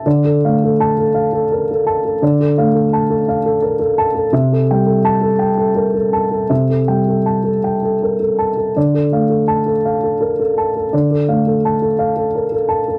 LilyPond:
<<
  \new Staff \with { instrumentName = "Grand piano" } { \time 3/4 \key d \minor \tempo 4 = 84 << { r4 a''8 r4. | r2. | r4 a''8 r4. | r2. |
r4 a''8 r4. | r2. | } \\ { d''16 a'16 f''16 a'8 a'16 f''16 a'16 bes'16 a'16 a''16 a'16 | d''16 a'16 f''16 a'16 a''16 a'16 f''16 a'16 bes'16 a'16 a''16 a'16 | e''16 a'16 g''16 a'8 a'16 g''16 a'16 bes'16 a'16 a''16 a'16 | e''16 a'16 g''16 a'16 a''16 a'16 g''16 a'16 bes'16 a'16 a''16 a'16 |
d''16 a'16 f''16 a'8 a'16 f''16 a'16 bes'16 a'16 a''16 a'16 | d''16 a'16 f''16 a'16 a''16 a'16 f''16 a'16 bes'16 a'16 a''16 a'16 | } >> }
  \new Staff \with { instrumentName = "Grand piano" } { \clef bass \time 3/4 \key d \minor d8 a4 r4. | d8 a4 r4. | c8 g4 r4. | c8 g4 r4. |
d8 a4 r4. | d8 a4 r4. | }
>>